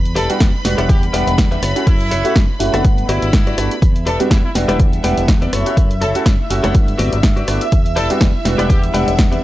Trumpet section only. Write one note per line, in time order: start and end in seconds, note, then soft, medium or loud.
0.16 0.29 A4 medium
0.89 1.02 G4 medium
1.87 2.36 E4 loud
3.09 3.78 E4 loud
4.07 4.20 A4 medium
4.31 4.39 E4 medium
4.45 4.51 E4 medium
6.02 6.10 A4 medium
6.15 6.22 A4 medium
7.96 8.10 A4 medium
8.70 8.83 G4 medium